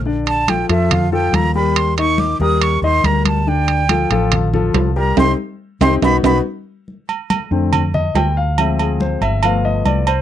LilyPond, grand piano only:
<<
  \new Staff \with { instrumentName = "Grand piano" } { \time 4/4 \key d \phrygian \tempo 4 = 141 <d d' d''>4 <f f' a'>8 <f f' a'>4 <f f' a'>4 <g g' bes'>8~ | <g g' bes'>8 <ees ees' ees''>4 <g g' bes'>4 <ees ees' ees''>8 <g g' bes'>4 | <d d' d''>4 <f f' a'>8 <f f' a'>4 <f f' a'>4 <g g' bes'>8 | <c' ees' g'>8 r4 <c' ees' g'>8 <b dis' fis'>8 <b dis' fis'>8 r4 |
r2 r8 ees''8 g''8 f''8 | e''8 aes'8 c''8 e''8 f''8 ees''8 d''8 c''8 | }
  \new Staff \with { instrumentName = "Grand piano" } { \time 4/4 \key d \phrygian r1 | r1 | r1 | r1 |
r4. <d a c'>8 r2 | <f aes c'>2 <f a b>4. r8 | }
>>